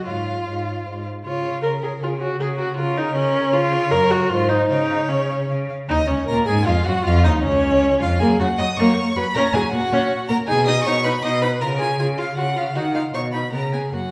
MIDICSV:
0, 0, Header, 1, 5, 480
1, 0, Start_track
1, 0, Key_signature, -5, "major"
1, 0, Tempo, 390117
1, 95, Time_signature, 3, 2, 24, 8
1, 2495, Tempo, 380228
1, 5375, Tempo, 390625
1, 7320, Key_signature, 6, "major"
1, 9695, Tempo, 379747
1, 16415, Tempo, 392413
1, 17602, End_track
2, 0, Start_track
2, 0, Title_t, "Violin"
2, 0, Program_c, 0, 40
2, 64, Note_on_c, 0, 73, 52
2, 163, Note_off_c, 0, 73, 0
2, 316, Note_on_c, 0, 73, 47
2, 414, Note_off_c, 0, 73, 0
2, 574, Note_on_c, 0, 73, 47
2, 673, Note_off_c, 0, 73, 0
2, 816, Note_on_c, 0, 73, 40
2, 914, Note_off_c, 0, 73, 0
2, 1050, Note_on_c, 0, 72, 43
2, 1149, Note_off_c, 0, 72, 0
2, 1285, Note_on_c, 0, 72, 44
2, 1384, Note_off_c, 0, 72, 0
2, 1526, Note_on_c, 0, 73, 54
2, 1624, Note_off_c, 0, 73, 0
2, 1753, Note_on_c, 0, 73, 50
2, 1852, Note_off_c, 0, 73, 0
2, 1992, Note_on_c, 0, 73, 54
2, 2091, Note_off_c, 0, 73, 0
2, 2233, Note_on_c, 0, 73, 48
2, 2332, Note_off_c, 0, 73, 0
2, 2452, Note_on_c, 0, 73, 56
2, 2552, Note_off_c, 0, 73, 0
2, 2709, Note_on_c, 0, 73, 53
2, 2810, Note_off_c, 0, 73, 0
2, 2958, Note_on_c, 0, 70, 62
2, 3058, Note_off_c, 0, 70, 0
2, 3186, Note_on_c, 0, 70, 64
2, 3287, Note_off_c, 0, 70, 0
2, 3431, Note_on_c, 0, 70, 65
2, 3532, Note_off_c, 0, 70, 0
2, 3667, Note_on_c, 0, 70, 59
2, 3768, Note_off_c, 0, 70, 0
2, 3901, Note_on_c, 0, 70, 67
2, 4002, Note_off_c, 0, 70, 0
2, 4137, Note_on_c, 0, 70, 65
2, 4238, Note_off_c, 0, 70, 0
2, 4388, Note_on_c, 0, 73, 81
2, 4488, Note_off_c, 0, 73, 0
2, 4627, Note_on_c, 0, 73, 74
2, 4727, Note_off_c, 0, 73, 0
2, 4865, Note_on_c, 0, 75, 80
2, 4966, Note_off_c, 0, 75, 0
2, 5110, Note_on_c, 0, 75, 67
2, 5211, Note_off_c, 0, 75, 0
2, 5365, Note_on_c, 0, 72, 70
2, 5463, Note_off_c, 0, 72, 0
2, 5602, Note_on_c, 0, 72, 66
2, 5701, Note_off_c, 0, 72, 0
2, 5851, Note_on_c, 0, 77, 69
2, 5950, Note_off_c, 0, 77, 0
2, 6091, Note_on_c, 0, 77, 60
2, 6189, Note_off_c, 0, 77, 0
2, 6327, Note_on_c, 0, 77, 58
2, 6425, Note_off_c, 0, 77, 0
2, 6584, Note_on_c, 0, 77, 53
2, 6682, Note_off_c, 0, 77, 0
2, 6826, Note_on_c, 0, 77, 52
2, 6924, Note_off_c, 0, 77, 0
2, 7072, Note_on_c, 0, 77, 56
2, 7170, Note_off_c, 0, 77, 0
2, 7306, Note_on_c, 0, 75, 106
2, 7544, Note_on_c, 0, 73, 96
2, 7563, Note_off_c, 0, 75, 0
2, 7784, Note_off_c, 0, 73, 0
2, 7792, Note_on_c, 0, 82, 113
2, 7888, Note_off_c, 0, 82, 0
2, 8024, Note_on_c, 0, 80, 101
2, 8256, Note_on_c, 0, 77, 94
2, 8275, Note_off_c, 0, 80, 0
2, 8502, Note_on_c, 0, 78, 106
2, 8520, Note_off_c, 0, 77, 0
2, 8742, Note_off_c, 0, 78, 0
2, 8753, Note_on_c, 0, 77, 108
2, 8846, Note_off_c, 0, 77, 0
2, 8983, Note_on_c, 0, 75, 110
2, 9079, Note_off_c, 0, 75, 0
2, 9216, Note_on_c, 0, 73, 114
2, 9916, Note_off_c, 0, 73, 0
2, 9932, Note_on_c, 0, 77, 104
2, 10153, Note_off_c, 0, 77, 0
2, 10161, Note_on_c, 0, 80, 113
2, 10260, Note_off_c, 0, 80, 0
2, 10426, Note_on_c, 0, 78, 103
2, 10670, Note_on_c, 0, 87, 120
2, 10689, Note_off_c, 0, 78, 0
2, 10883, Note_on_c, 0, 85, 107
2, 10902, Note_off_c, 0, 87, 0
2, 11382, Note_on_c, 0, 83, 124
2, 11401, Note_off_c, 0, 85, 0
2, 11610, Note_on_c, 0, 82, 126
2, 11629, Note_off_c, 0, 83, 0
2, 11848, Note_on_c, 0, 80, 120
2, 11867, Note_off_c, 0, 82, 0
2, 12079, Note_off_c, 0, 80, 0
2, 12087, Note_on_c, 0, 78, 124
2, 12792, Note_off_c, 0, 78, 0
2, 12799, Note_on_c, 0, 82, 116
2, 12897, Note_off_c, 0, 82, 0
2, 13040, Note_on_c, 0, 80, 125
2, 13275, Note_off_c, 0, 80, 0
2, 13282, Note_on_c, 0, 87, 125
2, 13495, Note_off_c, 0, 87, 0
2, 13503, Note_on_c, 0, 85, 118
2, 13760, Note_on_c, 0, 83, 113
2, 13778, Note_off_c, 0, 85, 0
2, 13990, Note_on_c, 0, 87, 107
2, 14009, Note_off_c, 0, 83, 0
2, 14229, Note_off_c, 0, 87, 0
2, 14237, Note_on_c, 0, 83, 104
2, 14334, Note_off_c, 0, 83, 0
2, 14481, Note_on_c, 0, 82, 112
2, 14577, Note_off_c, 0, 82, 0
2, 14708, Note_on_c, 0, 80, 115
2, 14949, Note_off_c, 0, 80, 0
2, 14957, Note_on_c, 0, 80, 103
2, 15055, Note_off_c, 0, 80, 0
2, 15208, Note_on_c, 0, 77, 99
2, 15438, Note_off_c, 0, 77, 0
2, 15445, Note_on_c, 0, 78, 109
2, 15693, Note_on_c, 0, 77, 96
2, 15712, Note_off_c, 0, 78, 0
2, 15921, Note_on_c, 0, 78, 105
2, 15940, Note_off_c, 0, 77, 0
2, 16160, Note_off_c, 0, 78, 0
2, 16168, Note_on_c, 0, 77, 97
2, 16265, Note_off_c, 0, 77, 0
2, 16412, Note_on_c, 0, 85, 97
2, 16507, Note_off_c, 0, 85, 0
2, 16644, Note_on_c, 0, 83, 81
2, 16879, Note_off_c, 0, 83, 0
2, 16885, Note_on_c, 0, 82, 86
2, 17121, Note_off_c, 0, 82, 0
2, 17131, Note_on_c, 0, 80, 75
2, 17227, Note_off_c, 0, 80, 0
2, 17370, Note_on_c, 0, 78, 89
2, 17602, Note_off_c, 0, 78, 0
2, 17602, End_track
3, 0, Start_track
3, 0, Title_t, "Violin"
3, 0, Program_c, 1, 40
3, 81, Note_on_c, 1, 77, 67
3, 1273, Note_off_c, 1, 77, 0
3, 1551, Note_on_c, 1, 73, 72
3, 1991, Note_off_c, 1, 73, 0
3, 2028, Note_on_c, 1, 70, 75
3, 2499, Note_on_c, 1, 68, 62
3, 2518, Note_off_c, 1, 70, 0
3, 2969, Note_off_c, 1, 68, 0
3, 2976, Note_on_c, 1, 66, 71
3, 3464, Note_on_c, 1, 70, 84
3, 3483, Note_off_c, 1, 66, 0
3, 4412, Note_on_c, 1, 73, 106
3, 4431, Note_off_c, 1, 70, 0
3, 5373, Note_off_c, 1, 73, 0
3, 5380, Note_on_c, 1, 72, 94
3, 5874, Note_on_c, 1, 73, 90
3, 5892, Note_off_c, 1, 72, 0
3, 7086, Note_off_c, 1, 73, 0
3, 7342, Note_on_c, 1, 63, 103
3, 7434, Note_off_c, 1, 63, 0
3, 7570, Note_on_c, 1, 61, 80
3, 7796, Note_off_c, 1, 61, 0
3, 7803, Note_on_c, 1, 70, 103
3, 7897, Note_off_c, 1, 70, 0
3, 8043, Note_on_c, 1, 68, 91
3, 8244, Note_off_c, 1, 68, 0
3, 8252, Note_on_c, 1, 65, 103
3, 8500, Note_on_c, 1, 66, 93
3, 8518, Note_off_c, 1, 65, 0
3, 8731, Note_off_c, 1, 66, 0
3, 8738, Note_on_c, 1, 65, 113
3, 8989, Note_on_c, 1, 63, 96
3, 9008, Note_off_c, 1, 65, 0
3, 9207, Note_on_c, 1, 61, 100
3, 9226, Note_off_c, 1, 63, 0
3, 9915, Note_on_c, 1, 65, 102
3, 9934, Note_off_c, 1, 61, 0
3, 10168, Note_on_c, 1, 68, 119
3, 10187, Note_off_c, 1, 65, 0
3, 10413, Note_off_c, 1, 68, 0
3, 10419, Note_on_c, 1, 66, 89
3, 10515, Note_off_c, 1, 66, 0
3, 10646, Note_on_c, 1, 75, 127
3, 10745, Note_off_c, 1, 75, 0
3, 10916, Note_on_c, 1, 73, 97
3, 11378, Note_off_c, 1, 73, 0
3, 11397, Note_on_c, 1, 71, 104
3, 11489, Note_off_c, 1, 71, 0
3, 11624, Note_on_c, 1, 70, 125
3, 11719, Note_off_c, 1, 70, 0
3, 11867, Note_on_c, 1, 68, 108
3, 11961, Note_off_c, 1, 68, 0
3, 12092, Note_on_c, 1, 66, 111
3, 12795, Note_off_c, 1, 66, 0
3, 12819, Note_on_c, 1, 70, 106
3, 12913, Note_off_c, 1, 70, 0
3, 13052, Note_on_c, 1, 68, 126
3, 13303, Note_on_c, 1, 75, 111
3, 13322, Note_off_c, 1, 68, 0
3, 13537, Note_on_c, 1, 73, 116
3, 13556, Note_off_c, 1, 75, 0
3, 13754, Note_off_c, 1, 73, 0
3, 13762, Note_on_c, 1, 71, 107
3, 13859, Note_off_c, 1, 71, 0
3, 14004, Note_on_c, 1, 75, 116
3, 14238, Note_on_c, 1, 71, 102
3, 14257, Note_off_c, 1, 75, 0
3, 14479, Note_on_c, 1, 70, 111
3, 14498, Note_off_c, 1, 71, 0
3, 14707, Note_on_c, 1, 68, 98
3, 14726, Note_off_c, 1, 70, 0
3, 14957, Note_off_c, 1, 68, 0
3, 14965, Note_on_c, 1, 68, 101
3, 15062, Note_off_c, 1, 68, 0
3, 15193, Note_on_c, 1, 65, 86
3, 15293, Note_off_c, 1, 65, 0
3, 15445, Note_on_c, 1, 66, 87
3, 15542, Note_off_c, 1, 66, 0
3, 15679, Note_on_c, 1, 65, 81
3, 15777, Note_off_c, 1, 65, 0
3, 15929, Note_on_c, 1, 66, 97
3, 16026, Note_off_c, 1, 66, 0
3, 16179, Note_on_c, 1, 65, 83
3, 16274, Note_off_c, 1, 65, 0
3, 16405, Note_on_c, 1, 73, 96
3, 16501, Note_off_c, 1, 73, 0
3, 16653, Note_on_c, 1, 71, 68
3, 16871, Note_off_c, 1, 71, 0
3, 16878, Note_on_c, 1, 70, 83
3, 16976, Note_off_c, 1, 70, 0
3, 17129, Note_on_c, 1, 68, 77
3, 17384, Note_on_c, 1, 66, 75
3, 17402, Note_off_c, 1, 68, 0
3, 17602, Note_off_c, 1, 66, 0
3, 17602, End_track
4, 0, Start_track
4, 0, Title_t, "Viola"
4, 0, Program_c, 2, 41
4, 80, Note_on_c, 2, 65, 81
4, 1273, Note_off_c, 2, 65, 0
4, 1532, Note_on_c, 2, 65, 87
4, 1981, Note_off_c, 2, 65, 0
4, 2002, Note_on_c, 2, 70, 91
4, 2100, Note_off_c, 2, 70, 0
4, 2253, Note_on_c, 2, 68, 77
4, 2349, Note_off_c, 2, 68, 0
4, 2503, Note_on_c, 2, 65, 88
4, 2598, Note_off_c, 2, 65, 0
4, 2727, Note_on_c, 2, 66, 87
4, 2955, Note_off_c, 2, 66, 0
4, 2963, Note_on_c, 2, 68, 98
4, 3062, Note_off_c, 2, 68, 0
4, 3207, Note_on_c, 2, 66, 93
4, 3427, Note_off_c, 2, 66, 0
4, 3435, Note_on_c, 2, 65, 102
4, 3688, Note_on_c, 2, 63, 99
4, 3707, Note_off_c, 2, 65, 0
4, 3907, Note_off_c, 2, 63, 0
4, 3914, Note_on_c, 2, 61, 110
4, 4393, Note_on_c, 2, 65, 120
4, 4412, Note_off_c, 2, 61, 0
4, 4872, Note_on_c, 2, 70, 122
4, 4891, Note_off_c, 2, 65, 0
4, 5120, Note_on_c, 2, 66, 119
4, 5139, Note_off_c, 2, 70, 0
4, 5355, Note_on_c, 2, 65, 117
4, 5374, Note_off_c, 2, 66, 0
4, 5594, Note_on_c, 2, 63, 105
4, 5612, Note_off_c, 2, 65, 0
4, 5831, Note_off_c, 2, 63, 0
4, 5838, Note_on_c, 2, 63, 102
4, 6333, Note_on_c, 2, 61, 82
4, 6351, Note_off_c, 2, 63, 0
4, 6827, Note_off_c, 2, 61, 0
4, 7317, Note_on_c, 2, 63, 109
4, 7414, Note_off_c, 2, 63, 0
4, 7554, Note_on_c, 2, 61, 80
4, 7779, Note_off_c, 2, 61, 0
4, 7787, Note_on_c, 2, 70, 108
4, 8015, Note_off_c, 2, 70, 0
4, 8022, Note_on_c, 2, 68, 107
4, 8120, Note_off_c, 2, 68, 0
4, 8259, Note_on_c, 2, 65, 101
4, 8356, Note_off_c, 2, 65, 0
4, 8493, Note_on_c, 2, 66, 101
4, 8712, Note_on_c, 2, 65, 114
4, 8731, Note_off_c, 2, 66, 0
4, 8973, Note_on_c, 2, 63, 97
4, 8991, Note_off_c, 2, 65, 0
4, 9202, Note_off_c, 2, 63, 0
4, 9209, Note_on_c, 2, 61, 98
4, 9946, Note_on_c, 2, 65, 98
4, 9964, Note_off_c, 2, 61, 0
4, 10175, Note_off_c, 2, 65, 0
4, 10182, Note_on_c, 2, 58, 98
4, 10403, Note_off_c, 2, 58, 0
4, 10429, Note_on_c, 2, 49, 77
4, 10523, Note_off_c, 2, 49, 0
4, 10661, Note_on_c, 2, 54, 71
4, 10757, Note_off_c, 2, 54, 0
4, 10902, Note_on_c, 2, 58, 119
4, 11124, Note_off_c, 2, 58, 0
4, 11389, Note_on_c, 2, 54, 91
4, 11483, Note_off_c, 2, 54, 0
4, 11633, Note_on_c, 2, 61, 114
4, 11848, Note_off_c, 2, 61, 0
4, 11885, Note_on_c, 2, 54, 70
4, 11975, Note_off_c, 2, 54, 0
4, 12118, Note_on_c, 2, 58, 84
4, 12210, Note_off_c, 2, 58, 0
4, 12345, Note_on_c, 2, 61, 107
4, 12562, Note_off_c, 2, 61, 0
4, 12810, Note_on_c, 2, 58, 89
4, 12906, Note_off_c, 2, 58, 0
4, 13038, Note_on_c, 2, 63, 87
4, 13136, Note_off_c, 2, 63, 0
4, 13288, Note_on_c, 2, 63, 80
4, 13384, Note_off_c, 2, 63, 0
4, 13547, Note_on_c, 2, 63, 88
4, 13639, Note_off_c, 2, 63, 0
4, 13770, Note_on_c, 2, 63, 81
4, 13865, Note_off_c, 2, 63, 0
4, 14021, Note_on_c, 2, 63, 82
4, 14114, Note_off_c, 2, 63, 0
4, 14239, Note_on_c, 2, 63, 72
4, 14336, Note_off_c, 2, 63, 0
4, 14485, Note_on_c, 2, 65, 85
4, 14581, Note_off_c, 2, 65, 0
4, 14726, Note_on_c, 2, 65, 73
4, 14822, Note_off_c, 2, 65, 0
4, 14964, Note_on_c, 2, 65, 80
4, 15061, Note_off_c, 2, 65, 0
4, 15197, Note_on_c, 2, 65, 72
4, 15295, Note_off_c, 2, 65, 0
4, 15442, Note_on_c, 2, 65, 74
4, 15540, Note_off_c, 2, 65, 0
4, 15683, Note_on_c, 2, 65, 70
4, 15780, Note_off_c, 2, 65, 0
4, 15925, Note_on_c, 2, 63, 78
4, 16022, Note_off_c, 2, 63, 0
4, 16165, Note_on_c, 2, 63, 60
4, 16263, Note_off_c, 2, 63, 0
4, 16410, Note_on_c, 2, 63, 63
4, 16505, Note_off_c, 2, 63, 0
4, 16642, Note_on_c, 2, 63, 62
4, 16738, Note_off_c, 2, 63, 0
4, 16881, Note_on_c, 2, 59, 56
4, 16978, Note_off_c, 2, 59, 0
4, 17126, Note_on_c, 2, 59, 52
4, 17223, Note_off_c, 2, 59, 0
4, 17373, Note_on_c, 2, 58, 59
4, 17469, Note_off_c, 2, 58, 0
4, 17602, End_track
5, 0, Start_track
5, 0, Title_t, "Cello"
5, 0, Program_c, 3, 42
5, 99, Note_on_c, 3, 44, 61
5, 524, Note_off_c, 3, 44, 0
5, 584, Note_on_c, 3, 44, 54
5, 1010, Note_off_c, 3, 44, 0
5, 1067, Note_on_c, 3, 44, 56
5, 1489, Note_off_c, 3, 44, 0
5, 1554, Note_on_c, 3, 49, 67
5, 1969, Note_off_c, 3, 49, 0
5, 2036, Note_on_c, 3, 49, 67
5, 2447, Note_off_c, 3, 49, 0
5, 2504, Note_on_c, 3, 49, 70
5, 2924, Note_off_c, 3, 49, 0
5, 2985, Note_on_c, 3, 49, 78
5, 3405, Note_off_c, 3, 49, 0
5, 3464, Note_on_c, 3, 49, 84
5, 3881, Note_off_c, 3, 49, 0
5, 3944, Note_on_c, 3, 49, 87
5, 4358, Note_off_c, 3, 49, 0
5, 4416, Note_on_c, 3, 49, 98
5, 4835, Note_off_c, 3, 49, 0
5, 4888, Note_on_c, 3, 42, 93
5, 5317, Note_off_c, 3, 42, 0
5, 5377, Note_on_c, 3, 44, 90
5, 5801, Note_off_c, 3, 44, 0
5, 5857, Note_on_c, 3, 49, 84
5, 6287, Note_off_c, 3, 49, 0
5, 6353, Note_on_c, 3, 49, 76
5, 6780, Note_off_c, 3, 49, 0
5, 6831, Note_on_c, 3, 49, 71
5, 7262, Note_off_c, 3, 49, 0
5, 7323, Note_on_c, 3, 39, 100
5, 7418, Note_off_c, 3, 39, 0
5, 7569, Note_on_c, 3, 37, 74
5, 7663, Note_off_c, 3, 37, 0
5, 7798, Note_on_c, 3, 46, 107
5, 8031, Note_off_c, 3, 46, 0
5, 8046, Note_on_c, 3, 44, 104
5, 8266, Note_off_c, 3, 44, 0
5, 8274, Note_on_c, 3, 41, 104
5, 8368, Note_off_c, 3, 41, 0
5, 8510, Note_on_c, 3, 42, 91
5, 8605, Note_off_c, 3, 42, 0
5, 8753, Note_on_c, 3, 41, 109
5, 8995, Note_on_c, 3, 39, 96
5, 9014, Note_off_c, 3, 41, 0
5, 9219, Note_off_c, 3, 39, 0
5, 9226, Note_on_c, 3, 37, 99
5, 9922, Note_off_c, 3, 37, 0
5, 9945, Note_on_c, 3, 41, 96
5, 10175, Note_off_c, 3, 41, 0
5, 10186, Note_on_c, 3, 42, 104
5, 10280, Note_off_c, 3, 42, 0
5, 10421, Note_on_c, 3, 42, 71
5, 10517, Note_off_c, 3, 42, 0
5, 10652, Note_on_c, 3, 42, 77
5, 10750, Note_off_c, 3, 42, 0
5, 10896, Note_on_c, 3, 42, 117
5, 10993, Note_off_c, 3, 42, 0
5, 11374, Note_on_c, 3, 42, 73
5, 11470, Note_off_c, 3, 42, 0
5, 11614, Note_on_c, 3, 46, 115
5, 11711, Note_off_c, 3, 46, 0
5, 11848, Note_on_c, 3, 46, 75
5, 11946, Note_off_c, 3, 46, 0
5, 12095, Note_on_c, 3, 46, 74
5, 12191, Note_off_c, 3, 46, 0
5, 12338, Note_on_c, 3, 46, 119
5, 12433, Note_off_c, 3, 46, 0
5, 12819, Note_on_c, 3, 46, 80
5, 12913, Note_off_c, 3, 46, 0
5, 13053, Note_on_c, 3, 47, 106
5, 13473, Note_off_c, 3, 47, 0
5, 13530, Note_on_c, 3, 47, 99
5, 13952, Note_off_c, 3, 47, 0
5, 14004, Note_on_c, 3, 47, 93
5, 14428, Note_off_c, 3, 47, 0
5, 14497, Note_on_c, 3, 49, 96
5, 14915, Note_off_c, 3, 49, 0
5, 14972, Note_on_c, 3, 49, 90
5, 15395, Note_off_c, 3, 49, 0
5, 15460, Note_on_c, 3, 49, 83
5, 15880, Note_off_c, 3, 49, 0
5, 15934, Note_on_c, 3, 51, 83
5, 16357, Note_off_c, 3, 51, 0
5, 16423, Note_on_c, 3, 47, 78
5, 16835, Note_off_c, 3, 47, 0
5, 16886, Note_on_c, 3, 49, 74
5, 17311, Note_off_c, 3, 49, 0
5, 17367, Note_on_c, 3, 42, 69
5, 17602, Note_off_c, 3, 42, 0
5, 17602, End_track
0, 0, End_of_file